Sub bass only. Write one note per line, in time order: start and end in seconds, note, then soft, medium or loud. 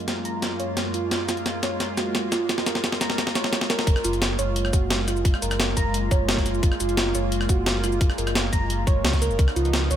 3.87 3.95 F#1 loud
4.04 4.38 F#1 medium
4.39 4.72 F#1 loud
4.73 5.24 F#1 medium
5.25 5.33 F#1 loud
5.42 5.75 F#1 medium
5.77 6.10 F#1 loud
6.11 6.62 F#1 medium
6.63 6.71 F#1 loud
6.80 7.13 F#1 medium
7.15 7.48 F#1 loud
7.49 8.00 F#1 medium
8.01 8.09 F#1 loud
8.18 8.51 F#1 medium
8.53 8.86 F#1 loud
8.87 9.04 F#1 medium
9.04 9.20 C#2 medium
9.22 9.30 C#2 medium
9.30 9.38 F#1 medium
9.39 9.47 C#2 loud
9.56 9.89 C#2 medium
9.91 9.96 C#2 loud